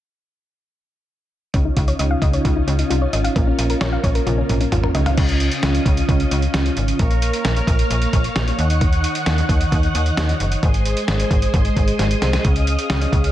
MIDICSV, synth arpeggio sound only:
0, 0, Header, 1, 2, 480
1, 0, Start_track
1, 0, Key_signature, -5, "major"
1, 0, Tempo, 454545
1, 1625, Time_signature, 4, 2, 24, 8
1, 14065, End_track
2, 0, Start_track
2, 0, Title_t, "Synth arpeggio sound"
2, 0, Program_c, 0, 84
2, 1624, Note_on_c, 0, 61, 81
2, 1704, Note_off_c, 0, 61, 0
2, 1743, Note_on_c, 0, 63, 74
2, 1824, Note_off_c, 0, 63, 0
2, 1863, Note_on_c, 0, 65, 74
2, 1944, Note_off_c, 0, 65, 0
2, 1984, Note_on_c, 0, 73, 88
2, 2064, Note_off_c, 0, 73, 0
2, 2103, Note_on_c, 0, 75, 80
2, 2184, Note_off_c, 0, 75, 0
2, 2224, Note_on_c, 0, 77, 84
2, 2304, Note_off_c, 0, 77, 0
2, 2344, Note_on_c, 0, 75, 93
2, 2424, Note_off_c, 0, 75, 0
2, 2465, Note_on_c, 0, 73, 76
2, 2545, Note_off_c, 0, 73, 0
2, 2585, Note_on_c, 0, 65, 75
2, 2665, Note_off_c, 0, 65, 0
2, 2704, Note_on_c, 0, 63, 84
2, 2784, Note_off_c, 0, 63, 0
2, 2824, Note_on_c, 0, 61, 70
2, 2904, Note_off_c, 0, 61, 0
2, 2944, Note_on_c, 0, 63, 72
2, 3024, Note_off_c, 0, 63, 0
2, 3064, Note_on_c, 0, 65, 93
2, 3144, Note_off_c, 0, 65, 0
2, 3184, Note_on_c, 0, 73, 77
2, 3264, Note_off_c, 0, 73, 0
2, 3304, Note_on_c, 0, 75, 78
2, 3385, Note_off_c, 0, 75, 0
2, 3423, Note_on_c, 0, 77, 94
2, 3504, Note_off_c, 0, 77, 0
2, 3545, Note_on_c, 0, 58, 83
2, 3625, Note_off_c, 0, 58, 0
2, 3666, Note_on_c, 0, 61, 76
2, 3746, Note_off_c, 0, 61, 0
2, 3785, Note_on_c, 0, 65, 74
2, 3865, Note_off_c, 0, 65, 0
2, 3906, Note_on_c, 0, 70, 91
2, 3985, Note_off_c, 0, 70, 0
2, 4024, Note_on_c, 0, 73, 82
2, 4104, Note_off_c, 0, 73, 0
2, 4144, Note_on_c, 0, 77, 84
2, 4224, Note_off_c, 0, 77, 0
2, 4265, Note_on_c, 0, 73, 92
2, 4345, Note_off_c, 0, 73, 0
2, 4384, Note_on_c, 0, 70, 77
2, 4464, Note_off_c, 0, 70, 0
2, 4505, Note_on_c, 0, 65, 77
2, 4585, Note_off_c, 0, 65, 0
2, 4625, Note_on_c, 0, 61, 85
2, 4705, Note_off_c, 0, 61, 0
2, 4745, Note_on_c, 0, 58, 71
2, 4825, Note_off_c, 0, 58, 0
2, 4864, Note_on_c, 0, 61, 74
2, 4945, Note_off_c, 0, 61, 0
2, 4986, Note_on_c, 0, 65, 92
2, 5065, Note_off_c, 0, 65, 0
2, 5104, Note_on_c, 0, 70, 80
2, 5185, Note_off_c, 0, 70, 0
2, 5224, Note_on_c, 0, 75, 82
2, 5304, Note_off_c, 0, 75, 0
2, 5344, Note_on_c, 0, 77, 99
2, 5424, Note_off_c, 0, 77, 0
2, 14065, End_track
0, 0, End_of_file